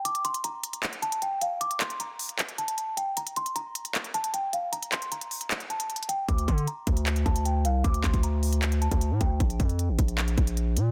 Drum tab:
HH |x--x--x--x--x-----x--x--x--x--x--x--x-----x-----|x--x--x--x--x-----o--x--x--x--x--x--x-----x-----|x--x--x--x--x-----x--x--x--x--x--x--x-----x-----|x--x--x--x--x--x--o--x--x--x--x--x--x-x-x-x-----|
CP |------------------------x-----------------------|------x-----------------x-----------------------|------------------------x-----------------------|------x-----------------x-----------------------|
BD |------------------------------------------------|------------------------------------------------|------------------------------------------------|------------------------------------------------|

HH |x--x--x--x--x-----x--x--x--x--x--x--x-----x-----|x--x--x--x--x-----o--x--x--x--x--x--x-----x-----|x--x--x--x--x-----x--x--x--x--x--x--x-----x-----|
CP |------------------------x-----------------------|------x-----------------x-----------------------|------------------------x-----------------------|
BD |o-----o-----------o-----------o-----------------|o-----o--o-----------------------o--------o-----|o-----o-----------o-----------o-----------------|